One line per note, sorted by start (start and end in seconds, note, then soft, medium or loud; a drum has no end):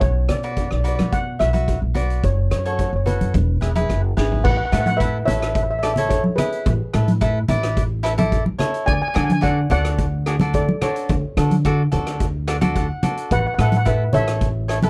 0.01 0.26 B1 medium
0.01 0.13 C#5 medium
0.01 kick loud
0.01 closed hi-hat soft
0.29 0.66 B2 medium
0.29 0.36 D5 medium
0.29 cross-stick medium
0.29 closed hi-hat medium
0.29 low conga medium
0.37 0.43 D5 medium
0.43 0.68 F#4 medium
0.43 0.68 B4 medium
0.43 0.68 D5 medium
0.43 0.51 D5 medium
0.43 closed hi-hat soft
0.52 0.57 D5 soft
0.57 0.65 D5 medium
0.57 kick medium
0.57 closed hi-hat soft
0.66 0.72 D5 soft
0.71 0.96 B1 medium
0.71 0.79 D5 medium
0.71 cross-stick medium
0.80 1.17 F#4 medium
0.80 1.18 B4 medium
0.80 0.87 D5 soft
0.85 1.18 D5 medium
0.85 0.94 D5 medium
0.85 closed hi-hat medium
0.96 1.35 B2 medium
0.96 1.04 D5 medium
0.96 cross-stick medium
0.96 closed hi-hat medium
0.96 high conga medium
1.12 1.38 F#5 medium
1.12 kick loud
1.12 closed hi-hat medium
1.39 1.77 B1 medium
1.39 1.48 F#4 medium
1.39 1.48 B4 medium
1.39 1.48 E5 medium
1.39 1.97 E5 medium
1.39 cross-stick medium
1.39 closed hi-hat medium
1.53 1.79 F#4 medium
1.53 1.78 B4 medium
1.53 1.78 E5 medium
1.53 closed hi-hat medium
1.53 high conga medium
1.68 kick medium
1.68 closed hi-hat medium
1.82 2.18 B1 medium
1.94 2.23 F#4 medium
1.94 2.22 B4 medium
1.94 2.23 D5 medium
1.94 2.22 D5 medium
1.94 closed hi-hat medium
1.94 low conga medium
2.10 closed hi-hat medium
2.23 2.47 F#1 medium
2.23 2.50 C#5 medium
2.23 kick loud
2.23 closed hi-hat medium
2.51 2.88 F#2 medium
2.51 2.58 C#5 medium
2.51 cross-stick medium
2.51 closed hi-hat medium
2.59 2.65 C#5 medium
2.65 2.90 F#4 medium
2.65 2.90 A4 medium
2.65 2.90 C#5 medium
2.65 2.72 C#5 medium
2.65 closed hi-hat medium
2.73 2.80 C#5 medium
2.79 2.88 C#5 medium
2.79 kick medium
2.79 closed hi-hat medium
2.90 3.17 F#1 medium
2.90 2.95 C#5 medium
2.96 3.03 C#5 medium
3.06 3.33 F#4 medium
3.06 3.34 A4 medium
3.06 4.13 B4 medium
3.06 3.34 C#5 medium
3.06 closed hi-hat medium
3.06 low conga medium
3.21 3.32 F#2 medium
3.21 closed hi-hat medium
3.21 high conga medium
3.34 3.58 E1 loud
3.34 kick loud
3.34 closed hi-hat medium
3.34 high conga soft
3.61 3.86 E1 medium
3.61 3.70 E4 medium
3.61 3.70 G#4 medium
3.61 3.70 B4 medium
3.61 cross-stick medium
3.61 closed hi-hat medium
3.75 4.00 E4 medium
3.75 4.00 G#4 medium
3.75 4.00 B4 loud
3.75 closed hi-hat medium
3.75 high conga medium
3.90 4.14 F#1 medium
3.90 kick medium
3.90 cross-stick medium
3.90 closed hi-hat medium
4.17 4.42 G#1 medium
4.17 4.44 E4 medium
4.17 4.44 G#4 medium
4.17 4.44 B4 medium
4.17 snare medium
4.32 floor tom medium
4.44 4.57 A1 loud
4.44 4.51 B4 medium
4.44 4.49 F#5 loud
4.44 kick loud
4.44 crash loud
4.50 4.56 F#5 medium
4.57 4.64 F#5 medium
4.65 4.71 F#5 medium
4.72 5.21 A2 loud
4.72 4.89 E4 medium
4.72 4.89 A4 medium
4.72 4.89 B4 medium
4.72 4.79 F#5 medium
4.72 cross-stick medium
4.72 closed hi-hat medium
4.81 4.86 F#5 medium
4.86 4.96 F#5 medium
4.86 closed hi-hat medium
4.86 high conga medium
4.97 5.17 E4 medium
4.97 5.24 B4 medium
4.97 5.24 E5 medium
4.97 kick medium
4.97 closed hi-hat medium
5.01 5.17 A4 medium
5.01 5.17 B4 medium
5.26 6.24 A1 medium
5.26 5.61 E4 medium
5.26 5.61 A4 medium
5.26 5.61 B4 medium
5.26 5.34 C#5 medium
5.26 5.32 E5 loud
5.26 closed hi-hat medium
5.26 low conga medium
5.33 5.39 E5 medium
5.40 5.49 E5 medium
5.40 cross-stick medium
5.40 closed hi-hat medium
5.50 5.55 E5 medium
5.55 5.62 E5 medium
5.55 kick loud
5.55 closed hi-hat medium
5.63 5.69 E5 medium
5.71 5.78 E5 medium
5.79 5.91 D5 medium
5.79 5.83 E5 medium
5.83 5.91 E4 medium
5.83 5.91 A4 medium
5.83 5.93 E5 medium
5.83 cross-stick medium
5.83 closed hi-hat medium
5.94 6.02 E5 medium
5.94 closed hi-hat medium
5.94 low conga medium
5.98 6.22 E4 medium
5.98 6.22 A4 medium
5.98 6.22 C#5 medium
6.09 6.22 A4 medium
6.09 6.22 C#5 medium
6.09 kick medium
6.09 closed hi-hat medium
6.24 high conga medium
6.36 6.71 E4 medium
6.36 7.99 G#4 medium
6.36 7.99 B4 medium
6.36 6.71 B4 medium
6.36 cross-stick medium
6.36 closed hi-hat loud
6.36 low conga medium
6.52 closed hi-hat medium
6.66 6.78 A1 loud
6.66 kick loud
6.66 closed hi-hat medium
6.93 7.42 A2 loud
6.93 7.10 E4 medium
6.93 7.10 A4 medium
6.93 7.10 B4 medium
6.93 cross-stick medium
6.93 closed hi-hat medium
7.08 closed hi-hat medium
7.08 high conga medium
7.21 7.38 E4 medium
7.21 7.38 A4 medium
7.21 7.38 B4 loud
7.21 kick medium
7.21 closed hi-hat medium
7.48 8.46 A1 medium
7.48 7.82 E4 medium
7.48 7.82 B4 medium
7.48 7.82 D5 medium
7.48 closed hi-hat medium
7.48 low conga medium
7.63 cross-stick medium
7.63 closed hi-hat medium
7.77 kick loud
7.77 closed hi-hat medium
8.03 8.12 E4 medium
8.03 8.12 A4 medium
8.03 8.12 B4 medium
8.03 cross-stick medium
8.03 closed hi-hat medium
8.18 8.43 E4 medium
8.18 8.43 A4 medium
8.18 8.43 D5 medium
8.18 closed hi-hat medium
8.18 high conga medium
8.18 low conga medium
8.32 kick medium
8.32 closed hi-hat medium
8.46 high conga medium
8.59 8.87 E4 medium
8.59 8.87 A4 medium
8.59 8.87 C#5 medium
8.59 cross-stick medium
8.59 closed hi-hat medium
8.59 low conga medium
8.74 closed hi-hat medium
8.86 9.00 D2 loud
8.86 8.94 D5 medium
8.86 8.92 G#5 loud
8.86 kick loud
8.86 closed hi-hat medium
8.93 9.01 G#5 medium
9.02 9.07 G#5 medium
9.08 9.15 G#5 medium
9.14 9.64 D3 loud
9.14 9.31 D4 medium
9.14 9.32 F#4 medium
9.14 9.31 A4 medium
9.14 9.23 G#5 medium
9.14 cross-stick loud
9.14 closed hi-hat medium
9.24 9.31 G#5 medium
9.30 9.40 G#5 medium
9.30 closed hi-hat medium
9.30 high conga medium
9.41 9.59 D4 medium
9.41 9.59 F#4 medium
9.41 9.59 A4 medium
9.41 9.69 D5 medium
9.41 9.70 F#5 medium
9.41 kick medium
9.41 closed hi-hat medium
9.70 10.68 D2 medium
9.70 10.03 D4 medium
9.70 10.04 F#4 medium
9.70 10.04 A4 medium
9.70 10.51 D5 medium
9.70 10.56 F#5 loud
9.70 closed hi-hat medium
9.70 low conga medium
9.85 cross-stick medium
9.85 closed hi-hat medium
9.98 kick loud
9.98 closed hi-hat medium
10.26 10.35 D4 medium
10.26 10.35 F#4 medium
10.26 10.35 G#4 medium
10.26 cross-stick medium
10.26 closed hi-hat medium
10.40 10.65 D4 medium
10.40 10.65 F#4 medium
10.40 10.65 A4 medium
10.40 closed hi-hat medium
10.40 high conga medium
10.40 low conga medium
10.54 10.67 A4 medium
10.54 10.67 D5 medium
10.54 kick medium
10.54 closed hi-hat medium
10.69 high conga medium
10.82 11.15 D4 medium
10.82 11.15 F#4 medium
10.82 11.15 A4 medium
10.82 12.45 A4 medium
10.82 12.44 C#5 medium
10.82 cross-stick medium
10.82 closed hi-hat medium
10.82 low conga medium
10.96 closed hi-hat medium
11.09 11.22 D2 loud
11.09 kick loud
11.09 closed hi-hat medium
11.37 11.85 D3 loud
11.37 11.54 D4 medium
11.37 11.54 F#4 medium
11.37 11.54 A4 medium
11.37 cross-stick medium
11.37 closed hi-hat medium
11.51 closed hi-hat medium
11.51 high conga medium
11.65 11.82 D4 medium
11.65 11.82 F#4 medium
11.65 11.82 A4 loud
11.65 kick medium
11.65 closed hi-hat medium
11.92 12.90 D2 medium
11.92 12.25 D4 medium
11.92 12.25 F#4 medium
11.92 12.25 A4 medium
11.92 closed hi-hat medium
11.92 low conga medium
12.07 cross-stick medium
12.07 closed hi-hat medium
12.20 kick medium
12.20 closed hi-hat medium
12.47 12.56 D4 medium
12.47 12.56 F#4 medium
12.47 12.56 A4 medium
12.47 cross-stick medium
12.47 closed hi-hat medium
12.61 12.86 D4 medium
12.61 12.86 F#4 medium
12.61 12.87 A4 loud
12.61 closed hi-hat medium
12.61 high conga medium
12.61 low conga medium
12.75 13.27 F#5 medium
12.75 kick medium
12.75 closed hi-hat medium
13.03 13.31 D4 medium
13.03 13.31 F#4 medium
13.03 13.31 A4 medium
13.03 closed hi-hat medium
13.03 high conga medium
13.03 low conga medium
13.17 closed hi-hat medium
13.31 13.43 A1 loud
13.31 13.38 B4 medium
13.31 13.38 F#5 loud
13.31 kick loud
13.31 closed hi-hat medium
13.39 13.45 F#5 medium
13.47 13.53 F#5 medium
13.54 13.60 F#5 medium
13.58 14.07 A2 loud
13.58 13.76 E4 medium
13.58 13.76 A4 medium
13.58 13.76 B4 medium
13.58 13.68 F#5 medium
13.58 cross-stick medium
13.58 closed hi-hat medium
13.69 13.76 F#5 medium
13.69 closed hi-hat medium
13.69 high conga medium
13.77 13.84 F#5 medium
13.85 14.02 E4 medium
13.85 14.03 A4 medium
13.85 14.03 B4 medium
13.85 14.12 B4 medium
13.85 14.13 E5 medium
13.85 kick medium
13.85 closed hi-hat medium
14.13 14.90 A1 medium
14.13 14.47 E4 medium
14.13 14.47 A4 medium
14.13 14.90 C#5 medium
14.13 14.47 C#5 medium
14.13 14.90 E5 loud
14.13 closed hi-hat medium
14.13 low conga medium
14.28 cross-stick medium
14.28 closed hi-hat medium
14.41 kick loud
14.41 closed hi-hat medium
14.68 14.77 E4 medium
14.68 14.77 A4 medium
14.68 14.77 C#5 medium
14.68 cross-stick medium
14.68 closed hi-hat medium
14.83 14.90 E4 medium
14.83 14.90 A4 medium
14.83 14.90 B4 loud
14.83 closed hi-hat medium
14.83 high conga medium
14.83 low conga medium